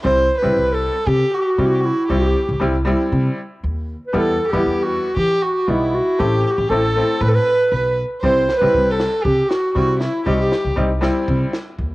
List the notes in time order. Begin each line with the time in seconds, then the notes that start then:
0.03 C2 G3 C4 E4 C5
0.38 G3 B4
0.43 C2 C4 E4
0.57 C2
0.73 A4
1.07 C3 G4
1.31 F#4 G4
1.41 F#4 G4
1.50 F#4
1.58 C3 G3 C4 E4 G4
1.66 F#4
1.74 G4
1.80 F#4
1.85 E4
2.08 C2 G3 C4 E4 G4
2.49 C2
2.60 C2 G3 C4 E4
2.85 G3 C4 E4
3.12 C3
3.63 D#2
4.07 B4
4.13 E2 G3 B3 E4 A4
4.17 A4
4.48 G4
4.53 E2 G3 B3 E4
4.66 E2
4.83 F#4
5.16 E3 G4
5.42 F#4
5.68 B1 G3 B3 D#4 E4
5.94 F#4
6.19 A1 A3 C4 E4 G4
6.45 G4
6.50 F#4
6.57 A1 G4
6.69 A1 A3 C4 E4 A4
6.96 A3 C4 E4
7.21 A2 B4
7.28 A4
7.35 B4
7.71 B1 B4
8.21 C2 G3 C4 E4 C5, kick
8.49 snare
8.56 B4
8.61 C2 G3 C4 E4
8.74 C2, kick
8.91 A4
9.00 snare
9.22 C3 G4, kick
9.49 F#4, snare
9.75 C3 G3 C4 E4 F#4, kick
10.00 E4, snare
10.25 C2 G3 C4 D#4 G4, kick
10.33 F#4
10.40 G4, snare
10.52 snare
10.65 C2
10.76 C2 G3 C4 D#4, kick
11.01 G3 C4 E4, snare
11.28 C3, kick
11.53 snare
11.78 D#2, kick